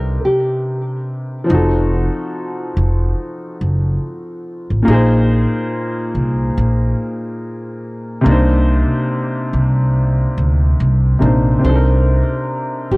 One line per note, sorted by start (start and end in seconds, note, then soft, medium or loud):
0.00 0.16 C2 medium
0.00 1.42 C3 medium
0.00 1.44 C4 medium
0.00 1.45 D4 medium
0.00 1.46 D#4 medium
0.00 0.20 A#4 medium
0.00 1.48 A#4 medium
0.25 0.87 G4 medium
1.44 4.81 F3 medium
1.44 4.82 C4 medium
1.49 2.06 F1 loud
1.49 4.83 D#4 medium
1.49 4.84 F#4 medium
1.54 4.86 A4 medium
2.77 3.12 F1 medium
3.61 3.97 F#1 medium
4.70 4.85 A1 medium
4.83 8.19 A#2 medium
4.83 8.20 A#3 medium
4.87 5.44 A#1 loud
4.87 8.21 D#4 medium
4.87 8.23 G#4 medium
4.93 8.24 C5 medium
6.15 6.50 C2 medium
6.58 6.93 A#1 medium
8.21 11.15 C3 medium
8.21 11.16 A#3 medium
8.26 8.82 C2 loud
8.26 11.18 D4 medium
8.26 11.19 D#4 medium
8.31 11.20 C5 medium
9.53 10.24 C2 medium
10.38 10.73 D2 medium
10.80 11.15 C2 medium
11.19 11.57 A#1 medium
11.19 11.57 C3 medium
11.19 11.63 A#3 medium
11.19 11.62 D4 medium
11.23 11.64 D#4 medium
11.23 11.65 C5 medium
11.59 12.97 C3 medium
11.59 12.97 C4 medium
11.64 12.21 C2 loud
11.64 12.97 D4 medium
11.64 12.97 D#4 medium
11.64 12.87 C5 medium
11.69 11.74 A4 medium
11.76 12.97 A#4 medium
12.91 12.97 D2 medium
12.91 12.97 G4 medium